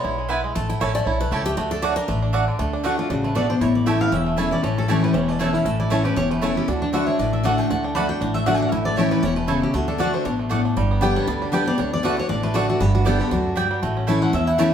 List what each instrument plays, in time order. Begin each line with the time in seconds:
Already playing: five-string banjo G#3 B3, steel-string acoustic guitar C#5
0.04 upright bass B1, five-string banjo E4
0.18 five-string banjo G#3
0.29 mandolin B3 E4 B4 G#5, five-string banjo E4
0.44 five-string banjo G#3
0.55 upright bass A1, five-string banjo A3, steel-string acoustic guitar A5
0.69 five-string banjo E4, steel-string acoustic guitar G5
0.81 upright bass A1, mandolin A3 E4 C#5 A5, five-string banjo C#4, steel-string acoustic guitar E5
0.95 five-string banjo A3, steel-string acoustic guitar D5
1.06 upright bass B1, five-string banjo E4, steel-string acoustic guitar C#5
1.20 five-string banjo A3, steel-string acoustic guitar B4
1.31 upright bass C#2, mandolin A3 E4 C#5 A5, five-string banjo G4, steel-string acoustic guitar A4
1.46 five-string banjo A3, steel-string acoustic guitar G4
1.57 upright bass D2, five-string banjo A3, steel-string acoustic guitar F#4
1.71 five-string banjo D4, steel-string acoustic guitar A4
1.82 mandolin A3 F#4 D5 F#5, five-string banjo D4, steel-string acoustic guitar C#5
1.96 five-string banjo D4, steel-string acoustic guitar A#4
2.08 upright bass A1, five-string banjo A3, steel-string acoustic guitar B4
2.22 five-string banjo D4
2.33 mandolin A3 F#4 D5 F#5, five-string banjo D4
2.48 five-string banjo D3
2.59 upright bass D2, steel-string acoustic guitar D3, five-string banjo A3
2.73 five-string banjo D4
2.84 steel-string acoustic guitar D3 A3 D4 F#4, mandolin A3 F#4 D5 F#5, five-string banjo A3
2.98 five-string banjo D4, steel-string acoustic guitar D4 F4 F#4
3.10 upright bass A1, steel-string acoustic guitar C#3 F#4, five-string banjo D4
3.24 five-string banjo A3, steel-string acoustic guitar B4
3.35 steel-string acoustic guitar B2 D5, mandolin A3 F#4 D5 F#5, five-string banjo D4
3.50 five-string banjo D4, steel-string acoustic guitar C5
3.61 upright bass A1, steel-string acoustic guitar A2 C#5, five-string banjo E4
3.75 steel-string acoustic guitar D5
3.86 steel-string acoustic guitar E3 A3 C#4 E4 E5, mandolin A3 E4 C#5 A5, five-string banjo G4
4.01 five-string banjo E4, steel-string acoustic guitar F5
4.12 upright bass E1, steel-string acoustic guitar E2 E5, five-string banjo C#4
4.26 five-string banjo A3
4.37 steel-string acoustic guitar E3 A3 C#4 E4, mandolin A3 E4 C#5 A5, five-string banjo E4
4.51 five-string banjo C#4, steel-string acoustic guitar C#4 E4 D5
4.62 upright bass A1, steel-string acoustic guitar A2 C#5, five-string banjo A3
4.78 five-string banjo C#4, steel-string acoustic guitar A4
4.88 steel-string acoustic guitar E3 A3 C#4 E4 G4, mandolin A3 E4 C#5 A5, five-string banjo G4
5.03 five-string banjo E4, steel-string acoustic guitar B4
5.14 upright bass E1, steel-string acoustic guitar E2 C#5, five-string banjo C#4
5.28 five-string banjo A3, steel-string acoustic guitar D5
5.39 steel-string acoustic guitar E3 A3 C#4 E4 E5, mandolin A3 E4 C#5 A5, five-string banjo C#4
5.53 steel-string acoustic guitar C#4 E4 F5, five-string banjo E4
5.65 upright bass A1, steel-string acoustic guitar A2 E5, five-string banjo A3
5.80 five-string banjo E4, steel-string acoustic guitar D5
5.90 steel-string acoustic guitar E3 A3 C#4 E4 C#5, mandolin A3 E4 C#5 A5, five-string banjo A3
6.04 steel-string acoustic guitar C#4 E4 B4, five-string banjo G4
6.16 upright bass E1, steel-string acoustic guitar E2 C#5, five-string banjo C#4
6.31 five-string banjo A3, steel-string acoustic guitar B4
6.41 steel-string acoustic guitar E3 A3 C#4 E4 A4, mandolin A3 E4 C#5 A5, five-string banjo E4
6.57 five-string banjo C#4, steel-string acoustic guitar G4
6.68 upright bass D2, steel-string acoustic guitar D3 F#4, five-string banjo D4
6.82 steel-string acoustic guitar D4, five-string banjo D4
6.92 steel-string acoustic guitar D3 A3 D4 F#4 E5, five-string banjo D3, mandolin A3 F#4 D5 F#5
7.07 five-string banjo D4, steel-string acoustic guitar C#5
7.19 upright bass A1, steel-string acoustic guitar A2 D5, five-string banjo D4
7.33 five-string banjo D4, steel-string acoustic guitar E5
7.43 steel-string acoustic guitar D3 A3 D4 F#4 F#5, mandolin A3 F#4 D5 F#5, five-string banjo A3
7.58 five-string banjo D4, steel-string acoustic guitar G5
7.70 upright bass D2, steel-string acoustic guitar D3 F#5, five-string banjo A3
7.84 five-string banjo D4, steel-string acoustic guitar G5
7.95 steel-string acoustic guitar D3 A3 D4 F#4 B5, mandolin A3 F#4 D5 F#5, five-string banjo D4
8.09 five-string banjo D4, steel-string acoustic guitar D4 F#4 G5
8.21 upright bass A1, steel-string acoustic guitar A2 F#5, five-string banjo D4
8.34 five-string banjo A3, steel-string acoustic guitar E5
8.46 steel-string acoustic guitar D3 A3 D4 F#4 F#5, mandolin A3 F#4 D5 F#5, five-string banjo D4
8.54 steel-string acoustic guitar G5
8.61 five-string banjo D4, steel-string acoustic guitar F#5
8.71 upright bass A1, steel-string acoustic guitar A2 E5, five-string banjo E4
8.85 five-string banjo A3, steel-string acoustic guitar D5
8.97 steel-string acoustic guitar E3 A3 C#4 E4 C#5, mandolin A3 E4 C#5 A5, five-string banjo G4
9.11 five-string banjo E4, steel-string acoustic guitar B4
9.23 upright bass E1, steel-string acoustic guitar B2 C#5, five-string banjo C#4
9.36 five-string banjo A3, steel-string acoustic guitar B4
9.47 steel-string acoustic guitar C#3 A4, mandolin A3 E4 C#5 A5, five-string banjo E4
9.62 five-string banjo C#4, steel-string acoustic guitar G4
9.74 upright bass D2, steel-string acoustic guitar D3 F#4, five-string banjo A3
9.88 five-string banjo D4, steel-string acoustic guitar A4
9.98 steel-string acoustic guitar D3 A3 D4 F#4 D5, mandolin A3 F#4 D5 F#5, five-string banjo A3
10.14 five-string banjo D4, steel-string acoustic guitar C5
10.25 upright bass A1, steel-string acoustic guitar B2 C#5, five-string banjo D4
10.39 five-string banjo A3
10.49 steel-string acoustic guitar A2, mandolin A3 F#4 D5 F#5, five-string banjo D4
10.65 five-string banjo D4
10.77 upright bass G1, steel-string acoustic guitar G2, five-string banjo G3
10.91 five-string banjo B3
11.01 steel-string acoustic guitar D3 G3 B3 G4, mandolin B3 G4 D5 G5, five-string banjo D4
11.16 five-string banjo G3, steel-string acoustic guitar C#5
11.27 upright bass D2, steel-string acoustic guitar D3 D5, five-string banjo B3
11.42 five-string banjo D4, steel-string acoustic guitar G4
11.52 steel-string acoustic guitar D3 G3 B3 G4 B4, mandolin B3 G4 D5 G5, five-string banjo G4
11.66 five-string banjo G3, steel-string acoustic guitar B3 G4 D5
11.78 upright bass D2, steel-string acoustic guitar D3 C#5, five-string banjo D4
11.93 five-string banjo D4, steel-string acoustic guitar D5
12.03 steel-string acoustic guitar D3 A3 D4 F#4 B4, mandolin A3 F#4 D5 F#5, five-string banjo A3
12.17 five-string banjo D4, steel-string acoustic guitar D4 F#4 C#5
12.29 upright bass A1, steel-string acoustic guitar A2 D5, five-string banjo D4
12.43 five-string banjo A3, steel-string acoustic guitar B4
12.54 steel-string acoustic guitar D3 A3 D4 F#4 A4, mandolin A3 F#4 D5 F#5, five-string banjo D4
12.69 five-string banjo D4, steel-string acoustic guitar F#4
12.80 upright bass G1, steel-string acoustic guitar G2 G4, five-string banjo B3
12.95 five-string banjo D4, steel-string acoustic guitar F#4
13.05 steel-string acoustic guitar D3 G3 B3 G4 A4, mandolin B3 G4 D5 G5, five-string banjo B3
13.19 five-string banjo D3, steel-string acoustic guitar B3 G4
13.31 upright bass D2, steel-string acoustic guitar F#2 F#4, five-string banjo D4
13.56 steel-string acoustic guitar G2, mandolin B3 G4 D5 G5, five-string banjo D4
13.71 five-string banjo G3
13.82 upright bass A1, steel-string acoustic guitar A2, five-string banjo A3
13.97 five-string banjo C#4
14.07 steel-string acoustic guitar E3 A3 C#4 E4, mandolin A3 E4 C#5 A5, five-string banjo E4
14.22 five-string banjo A3, steel-string acoustic guitar F#5
14.33 steel-string acoustic guitar E2 E5, upright bass E2, five-string banjo C#4
14.47 five-string banjo E4, steel-string acoustic guitar F#5
14.58 steel-string acoustic guitar E3 A3 C#4 E4 A5, mandolin A3 E4 C#5 A5, five-string banjo G4